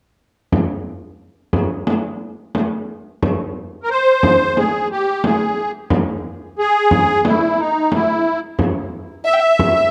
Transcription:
0.52 frame drum
1.53 frame drum
1.87 frame drum
2.55 frame drum
3.22 frame drum
3.83 A#4
3.90 C5
4.23 frame drum
4.57 G#4, frame drum
4.92 G4
5.24 G#4, frame drum
5.90 frame drum
6.59 G#4
6.91 frame drum
7.25 E4, frame drum
7.60 D#4
7.92 E4, frame drum
8.59 frame drum
9.24 E5
9.33 G5
9.40 E5
9.59 frame drum
9.76 E5

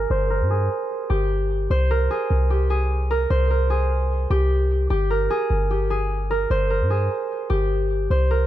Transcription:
Already playing: G#4 A#4
0.10 G1 C5
0.30 A#4
0.41 G2
0.50 G#4
1.10 G1 G4
1.70 C2 C5
1.91 A#4
2.10 G#4
2.30 C2
2.50 G4
2.70 G#4
3.11 A#4
3.30 C2 C5
3.50 A#4
3.70 G#4
4.30 C2 G4
4.90 G1 G4
5.10 A#4
5.30 G#4
5.50 G1
5.71 G4
5.90 G#4
6.31 A#4
6.50 G1 C5
6.70 A#4
6.81 G2
6.90 G#4
7.50 G1 G4
8.10 C2 C5
8.31 A#4

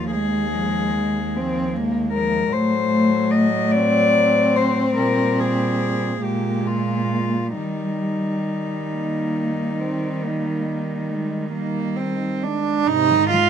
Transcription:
Already playing: D#2 F3 A#3 F4
0.11 G#3 G#4
0.16 G#3
0.54 F3
0.96 G#3
1.36 F3 C4
1.76 G#3 A#3
2.13 F3 G#3 A#4
2.53 A2 F#3 A3 C5
3.31 D#5
3.72 C4 D5
4.56 C5
4.97 A#2 G3 A#4
5.40 G#4
6.21 A#2 G#3 A#3 G4
6.67 F4
7.54 D#3 G3 D#4
8.92 A#3
9.79 C4
10.23 A#3
11.11 G#3
11.53 G3 A#3
11.96 C4
12.43 G#3 D4
12.87 G#2 C3 D#4 D#5
13.10 D#3
13.30 G#3 F4

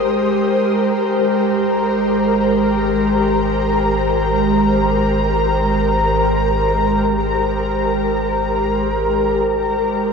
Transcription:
Already playing: G#1 G#3 G4 A#4 C5 D#6
0.77 G#1 A#5

